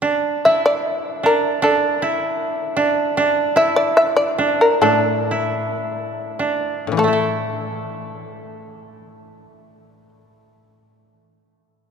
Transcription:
0.02 1.23 D4 medium
0.45 2.02 E4 medium
0.45 0.64 E5 medium
0.66 1.21 D5 medium
1.23 1.62 D4 medium
1.23 1.62 A#4 medium
1.62 2.76 D4 medium
1.62 2.75 A4 medium
2.02 3.55 E4 medium
2.77 3.17 D4 medium
3.17 4.38 D4 medium
3.56 5.31 E4 medium
3.56 3.76 E5 medium
3.76 3.96 D5 medium
3.97 4.16 E5 medium
4.17 4.58 D5 medium
4.38 4.82 D4 medium
4.61 4.81 A#4 medium
4.81 6.86 A2 soft
4.81 6.39 D4 medium
4.81 5.78 A4 medium
5.31 7.07 E4 soft
6.39 8.82 D4 soft
6.87 10.25 A2 soft
6.92 10.30 E3 soft
6.97 10.11 A3 soft
6.97 10.09 A4 medium
7.04 10.14 A3 soft
7.04 10.18 E4 soft
7.13 10.23 A4 soft

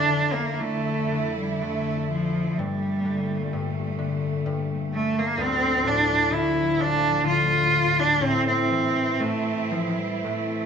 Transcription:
0.00 2.54 F2 medium
0.00 2.54 D3 medium
0.00 1.50 C4 soft
0.00 0.34 D4 medium
0.00 1.31 D4 soft
0.00 2.54 E4 medium
0.00 1.04 F4 soft
0.09 0.59 D3 soft
0.33 0.61 A#3 medium
0.60 1.11 D3 soft
0.60 1.36 A3 medium
1.12 1.61 D3 soft
1.38 1.64 G3 medium
1.62 2.62 D3 soft
1.62 2.10 A3 medium
2.11 2.60 F3 medium
2.56 3.52 G2 medium
2.56 5.34 A#2 medium
2.56 5.34 G3 medium
2.56 3.99 G3 medium
2.56 5.34 A3 medium
3.05 3.97 D3 soft
3.53 4.45 G2 medium
3.99 5.42 D3 soft
4.46 5.42 G2 medium
4.94 5.21 A3 medium
5.19 5.42 A#3 medium
5.38 8.25 D2 medium
5.38 8.18 D2 medium
5.38 10.66 A2 medium
5.38 8.18 F3 medium
5.38 5.89 C4 loud
5.84 6.35 A2 soft
5.84 6.35 D4 loud
6.31 7.23 D3 medium
6.31 6.82 E4 medium
6.78 7.29 F3 medium
6.78 7.26 D4 loud
7.24 8.25 D3 medium
7.24 8.01 F4 loud
8.00 8.25 D4 medium
8.21 9.19 A2 medium
8.21 10.66 C4 medium
8.21 8.46 C4 loud
8.21 10.66 E4 medium
8.47 9.21 C4 medium
8.70 9.69 E3 soft
9.20 10.23 A2 soft
9.20 9.72 A3 medium
9.71 10.66 E3 soft
9.71 9.98 F3 medium
9.97 10.25 G3 medium
10.24 10.66 A2 soft
10.24 10.66 A3 medium

